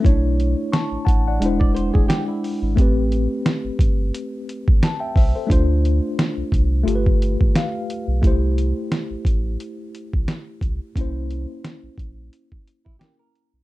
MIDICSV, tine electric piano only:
0, 0, Header, 1, 2, 480
1, 0, Start_track
1, 0, Key_signature, 0, "major"
1, 0, Tempo, 681818
1, 30, Time_signature, 4, 2, 24, 8
1, 9600, End_track
2, 0, Start_track
2, 0, Title_t, "Tine electric piano"
2, 0, Program_c, 0, 4
2, 0, Control_c, 0, 64, 127
2, 2, Note_on_c, 0, 57, 82
2, 17, Note_on_c, 0, 61, 63
2, 30, Note_on_c, 0, 64, 73
2, 38, Control_c, 0, 64, 0
2, 43, Note_on_c, 0, 73, 92
2, 63, Note_on_c, 0, 62, 71
2, 75, Note_off_c, 0, 61, 0
2, 142, Control_c, 0, 64, 127
2, 271, Note_off_c, 0, 73, 0
2, 511, Note_on_c, 0, 85, 65
2, 515, Note_on_c, 0, 81, 56
2, 730, Note_off_c, 0, 81, 0
2, 738, Note_off_c, 0, 85, 0
2, 739, Note_on_c, 0, 81, 74
2, 744, Note_on_c, 0, 78, 63
2, 874, Note_off_c, 0, 81, 0
2, 877, Note_off_c, 0, 78, 0
2, 897, Note_on_c, 0, 78, 63
2, 901, Note_on_c, 0, 74, 59
2, 957, Note_off_c, 0, 57, 0
2, 971, Note_off_c, 0, 64, 0
2, 986, Note_on_c, 0, 56, 77
2, 988, Note_off_c, 0, 62, 0
2, 998, Control_c, 0, 64, 0
2, 998, Note_on_c, 0, 62, 72
2, 1011, Note_on_c, 0, 64, 73
2, 1025, Note_on_c, 0, 72, 85
2, 1114, Control_c, 0, 64, 127
2, 1120, Note_off_c, 0, 78, 0
2, 1122, Note_off_c, 0, 74, 0
2, 1928, Note_off_c, 0, 56, 0
2, 1934, Note_off_c, 0, 62, 0
2, 1941, Note_off_c, 0, 64, 0
2, 1941, Note_on_c, 0, 57, 79
2, 1948, Note_off_c, 0, 72, 0
2, 1954, Note_on_c, 0, 60, 75
2, 1959, Control_c, 0, 64, 0
2, 1968, Note_on_c, 0, 67, 74
2, 1981, Note_on_c, 0, 71, 77
2, 2089, Control_c, 0, 64, 127
2, 3377, Note_off_c, 0, 71, 0
2, 3408, Note_on_c, 0, 81, 67
2, 3522, Note_on_c, 0, 79, 69
2, 3524, Note_on_c, 0, 76, 58
2, 3529, Note_off_c, 0, 81, 0
2, 3622, Note_off_c, 0, 79, 0
2, 3623, Note_off_c, 0, 76, 0
2, 3638, Note_on_c, 0, 76, 66
2, 3643, Note_on_c, 0, 72, 55
2, 3762, Note_off_c, 0, 72, 0
2, 3764, Note_off_c, 0, 76, 0
2, 3770, Note_on_c, 0, 72, 62
2, 3774, Note_on_c, 0, 69, 52
2, 3837, Note_off_c, 0, 57, 0
2, 3844, Note_off_c, 0, 60, 0
2, 3850, Note_on_c, 0, 57, 81
2, 3851, Note_off_c, 0, 67, 0
2, 3861, Note_on_c, 0, 62, 73
2, 3875, Note_on_c, 0, 65, 75
2, 3878, Control_c, 0, 64, 0
2, 3880, Note_off_c, 0, 72, 0
2, 3889, Note_on_c, 0, 72, 86
2, 3998, Note_off_c, 0, 69, 0
2, 4024, Control_c, 0, 64, 127
2, 4800, Note_off_c, 0, 57, 0
2, 4806, Note_off_c, 0, 62, 0
2, 4812, Note_on_c, 0, 57, 83
2, 4813, Note_off_c, 0, 65, 0
2, 4820, Note_off_c, 0, 72, 0
2, 4825, Note_on_c, 0, 65, 67
2, 4837, Control_c, 0, 64, 0
2, 4839, Note_on_c, 0, 67, 69
2, 4852, Note_on_c, 0, 69, 60
2, 4893, Note_off_c, 0, 69, 0
2, 4897, Note_on_c, 0, 71, 81
2, 4962, Control_c, 0, 64, 127
2, 5324, Note_on_c, 0, 77, 76
2, 5761, Note_off_c, 0, 57, 0
2, 5768, Note_off_c, 0, 65, 0
2, 5769, Note_off_c, 0, 77, 0
2, 5775, Note_off_c, 0, 67, 0
2, 5784, Note_on_c, 0, 57, 76
2, 5798, Control_c, 0, 64, 0
2, 5798, Note_on_c, 0, 64, 72
2, 5805, Note_off_c, 0, 71, 0
2, 5811, Note_on_c, 0, 67, 65
2, 5823, Note_on_c, 0, 72, 87
2, 5910, Control_c, 0, 64, 127
2, 7679, Note_off_c, 0, 57, 0
2, 7685, Note_off_c, 0, 64, 0
2, 7692, Note_off_c, 0, 67, 0
2, 7698, Note_off_c, 0, 72, 0
2, 7710, Note_on_c, 0, 58, 69
2, 7720, Control_c, 0, 64, 0
2, 7725, Note_on_c, 0, 61, 71
2, 7737, Note_on_c, 0, 64, 69
2, 7750, Note_on_c, 0, 72, 82
2, 7829, Control_c, 0, 64, 127
2, 9122, Note_off_c, 0, 58, 0
2, 9129, Note_off_c, 0, 61, 0
2, 9135, Note_off_c, 0, 64, 0
2, 9142, Note_off_c, 0, 72, 0
2, 9156, Note_on_c, 0, 58, 50
2, 9162, Note_on_c, 0, 61, 52
2, 9169, Note_on_c, 0, 64, 46
2, 9175, Note_on_c, 0, 70, 54
2, 9600, Note_off_c, 0, 58, 0
2, 9600, Note_off_c, 0, 61, 0
2, 9600, Note_off_c, 0, 64, 0
2, 9600, Note_off_c, 0, 70, 0
2, 9600, End_track
0, 0, End_of_file